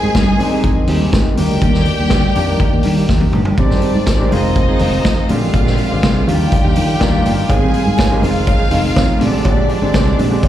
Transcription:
Already playing: D#3 G#3 C4 G#4 A#4 D#5 G#5
0.02 G#2 G3 C4 D#4 G4
0.14 G2 G3 C4 D#4 G4, kick, snare, closed hi-hat, high conga
0.27 muted clean electric guitar stroke
0.38 D#3 G#3 C4 D4, muted clean electric guitar stroke, open hi-hat, low conga
0.45 D#4
0.51 G3 C4 D#4 G4
0.64 F2, kick, closed hi-hat, muted conga
0.77 muted clean electric guitar stroke
0.87 D#2 G3 C4 D#4 G4, open hi-hat, low conga
0.99 D#3 G#3 C4 G4, muted clean electric guitar stroke
1.13 G#2, kick, snare, closed hi-hat, high conga
1.25 muted clean electric guitar stroke, high conga
1.37 D#2 D#3 G3 A#3 D4 G4 D5 G5, open hi-hat, high conga
1.50 D2 G3 A#3 D4 G4
1.62 D#2 G3 A#3 D4 G4, kick, closed hi-hat, muted conga
1.74 muted clean electric guitar stroke, snare
1.85 muted clean electric guitar stroke, open hi-hat, muted conga
1.99 D#2 G3 A#3 D4 G4
2.10 D2 G3 A#3 D4 G4, kick, snare, closed hi-hat, high conga
2.24 muted clean electric guitar stroke
2.35 F2 D#3 A#3 D4 G4, open hi-hat, low conga
2.48 G3 A#3 D4 G4
2.60 kick, closed hi-hat, muted conga
2.73 D#2, muted clean electric guitar stroke
2.83 D#3 G3 A#3 D4 G4, open hi-hat, low conga
2.97 D#3 A#3 D4 G4, muted clean electric guitar stroke
3.09 D#2, kick, snare, high conga
3.21 high tom
3.33 G1 G3 A#3 D4 G4, mid tom, high conga
3.45 G3 A#3 D4 G4, floor tom
3.58 G#1 D#3 G#3 C4 D4 G4 C5 D5, kick, closed hi-hat, muted conga
3.70 G3 C4 D#4 G4, snare
3.81 G3 C4 D#4 G4, open hi-hat
3.95 G#2, muted clean electric guitar stroke
4.07 G#1, kick, snare, closed hi-hat, high conga
4.19 D#3 G3 G#3 C4 D#4 G4 A#4
4.31 F1 D#3 G#3 C4 D#4 F4 G#4 D#5, open hi-hat, low conga
4.45 muted clean electric guitar stroke
4.56 muted clean electric guitar stroke, kick, closed hi-hat, muted conga
4.68 G#3 C4 D#4 G#4
4.79 F1 D#3 G#3 C4 D#4 F4 G#4, open hi-hat, low conga
5.05 F2, kick, snare, closed hi-hat, high conga
5.17 muted clean electric guitar stroke
5.29 A#1 D3 G#3 C4 D4 F4 G4 A#4 D5 F5, open hi-hat, high conga
5.41 A1, muted clean electric guitar stroke
5.54 A#1, muted clean electric guitar stroke, kick, closed hi-hat, muted conga
5.66 G#3 C4 D4 G4, snare
5.78 G#3 C4 D4 G4, open hi-hat, muted conga
5.90 G#1 D3 G#3 C4 G4, muted clean electric guitar stroke
6.03 C2, kick, snare, closed hi-hat, high conga
6.15 G#3 C4 D4 G#4
6.27 D#2 D#3 F3 G3 A#3 D4 F4 G4 D5 F5 G5, open hi-hat, low conga
6.40 muted clean electric guitar stroke
6.52 kick, closed hi-hat, muted conga
6.64 D#2 F3 A#3 D4 G4
6.75 D#3 F3 A#3 D4 G4, open hi-hat, low conga
6.88 muted clean electric guitar stroke
7.00 D#2 D#3 G3 D4 F4, kick, snare, closed hi-hat, high conga
7.25 G1 F3 A#3 D4 G4, open hi-hat, high conga
7.38 muted clean electric guitar stroke
7.49 G#1 D#3 G#3 A#3 C4 G#4 G#5, muted clean electric guitar stroke, kick, closed hi-hat, cowbell, muted conga
7.56 C4
7.62 G3 C4 D#4 G4
7.74 G3 C4 D#4 G4, open hi-hat, muted conga
7.86 G#2, muted clean electric guitar stroke
7.98 G#1, muted clean electric guitar stroke, kick, snare, closed hi-hat, cowbell, high conga
8.10 D#3 G3 G#3 C4 D#4 G4 A#4
8.22 F1 D#3 G#3 C4 D#4 F4 G#4 F5, open hi-hat, low conga
8.35 muted clean electric guitar stroke
8.47 muted clean electric guitar stroke, kick, closed hi-hat, cowbell, muted conga
8.59 G#3 C4 D#4 G#4
8.71 F1 D#3 G#3 C4 D#4 G#4, open hi-hat, low conga
8.83 muted clean electric guitar stroke
8.95 F2, muted clean electric guitar stroke, kick, snare, closed hi-hat, cowbell, high conga
9.07 muted clean electric guitar stroke
9.19 A#1 D3 G#3 C4 D4 G4 D5, open hi-hat, high conga
9.32 A1, muted clean electric guitar stroke
9.45 A#1, kick, closed hi-hat, cowbell, muted conga
9.57 G#3 C4 D4 G4
9.69 G#3 C4 D4 G4, open hi-hat, muted conga
9.81 G#1 D3 G#3 C4 G4, muted clean electric guitar stroke
9.94 C2, kick, snare, closed hi-hat, cowbell, high conga
10.06 G#3 C4 D4 G#4
10.18 A#1 G#3 C4 D4 G4, open hi-hat, low conga
10.30 D3 G#3 C4 G4, muted clean electric guitar stroke
10.43 muted clean electric guitar stroke, kick, closed hi-hat, cowbell, muted conga

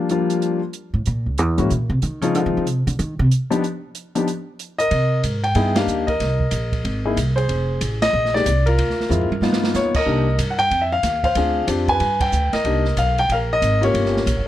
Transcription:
0.09 F3 G3 A#3 D4 F4, closed hi-hat
0.30 closed hi-hat
0.42 closed hi-hat
0.73 closed hi-hat
0.94 A2
1.06 A#2, closed hi-hat
1.26 C#2
1.38 E2, closed hi-hat
1.58 G#2 E3 G#3 A#3 C#4 F#4, closed hi-hat
1.70 A#2, closed hi-hat
1.90 C3
2.02 D#3, closed hi-hat
2.21 C#3 F3 G#3 C4 D#4 F4, closed hi-hat
2.35 D3, closed hi-hat
2.46 D#3
2.57 D3
2.67 C3, closed hi-hat
2.87 D3, closed hi-hat
2.99 D#3, closed hi-hat
3.19 C3
3.31 closed hi-hat
3.50 F3 B3 D4 D#4 G4, closed hi-hat
3.64 closed hi-hat
3.95 closed hi-hat
4.15 F3 B3 D4 D#4 G4, closed hi-hat
4.28 closed hi-hat
4.59 closed hi-hat
4.78 A#4 D#5, closed hi-hat
4.91 C3, kick, ride
5.23 G#2, kick, hi-hat pedal, ride
5.44 G5, ride
5.55 G2 B3 D#4 E4 G#4, kick, ride
5.76 A#3 D4 D#4 G4 F5, snare, ride
5.87 D#2, hi-hat pedal
6.07 A#4 D#5, kick, ride
6.20 C2, kick, snare, ride
6.40 kick
6.51 A#1, kick, hi-hat pedal, ride
6.72 kick, ride
6.84 G#1, kick, ride
7.05 A#3 D#4 E4 G#4
7.16 C2, kick, hi-hat pedal, ride
7.36 G#4 C5, ride
7.48 F1, kick, ride
7.81 A1, kick, hi-hat pedal, ride
8.02 D#5, snare, ride
8.13 A#1
8.25 snare
8.34 G#3 A#3 D#4 G4 D5, snare
8.46 C2, kick, hi-hat pedal, ride
8.66 F4 A#4, ride
8.78 D2, kick, ride
8.90 snare
9.00 snare
9.09 F2 G#3 C4 E4 F4, hi-hat pedal, mid tom
9.21 floor tom
9.31 muted upright bass stroke, high tom
9.41 G2 A#3 B3 D#4 F4, snare
9.53 snare
9.64 snare
9.74 D#2 C#5, snare, hi-hat pedal
9.94 A#4 D#5, muted upright bass stroke, kick, crash
10.06 C2 A#3 D4 D#4 G4, kick
10.38 G2, kick, hi-hat pedal, ride
10.50 F#5
10.59 G5, ride
10.71 F2, kick, ride
10.82 E5
10.92 F5
11.03 D#2, kick, snare, hi-hat pedal, ride
11.24 C5 F5, kick, ride
11.35 D2 C4 D4 F4 G#4, kick, ride
11.67 F2 C4 D4 F4 G4, kick, hi-hat pedal, ride
11.88 B4 G#5, kick, ride
12.00 G2, kick, ride
12.21 G5, kick, ride
12.32 D2, hi-hat pedal
12.53 A#4 D#5, muted upright bass stroke, snare, ride
12.64 C2 A#3 D4 D#4 G4, kick, ride
12.85 snare
12.97 B1 F5, kick, hi-hat pedal, ride
13.18 G5, ride
13.29 A#1 F5, kick, ride
13.33 A#4
13.53 D#5
13.62 G#1, kick, hi-hat pedal, ride
13.81 A#3 C#4 F4 G4 C#5, ride
13.85 A#4
13.94 G1, kick, ride
14.05 snare
14.16 snare
14.26 A#1, kick, hi-hat pedal, ride
14.36 G1

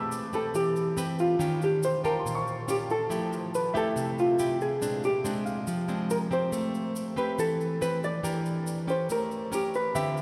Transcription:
Already playing: A3 C4 G4 B4 A5 D6
0.00 E6
0.12 shaker
0.33 C4 G4 A4 B4, shaker
0.54 E3 G4, shaker
0.76 shaker
0.97 C4 G4 B4, shaker
1.19 F4, shaker
1.39 D#3 C#4 F4 G4, shaker
1.62 G4, shaker
1.83 C5, shaker
2.04 C#4 F4 G4 A#4 A5, shaker
2.19 C6
2.25 A#2, shaker
2.35 C#6
2.47 shaker
2.68 C#4 F4 G4, shaker
2.90 A4, shaker
3.10 F3 A3 E4 G4, shaker
3.33 shaker
3.55 B4, shaker
3.74 A3 E4 G4 A4 E5, shaker
3.96 C3, shaker
4.19 F4, shaker
4.39 A3 E4 G4, shaker
4.61 G#4, shaker
4.81 A#2 G#3 C4 D4, shaker
5.04 G4, shaker
5.24 G#3 C4 D4, shaker
5.45 F5, shaker
5.67 F3, shaker
5.88 G#3 C4 D4, shaker
6.10 A#4, shaker
6.31 C4 G4 C5, shaker
6.52 A3, shaker
6.74 shaker
6.96 shaker
7.16 C4 G4 B4, shaker
7.38 E3 A4, shaker
7.61 shaker
7.81 C4 G4 B4, shaker
8.04 D5, shaker
8.23 E3 D4 G4 A#4, shaker
8.46 shaker
8.67 shaker
8.88 C#4 G4 C5, shaker
9.10 A3 A#4, shaker
9.31 shaker
9.52 C#4 G4 A#4, shaker
9.74 B4, shaker
9.95 D3 C4 F4 G4 E5, shaker
10.17 shaker

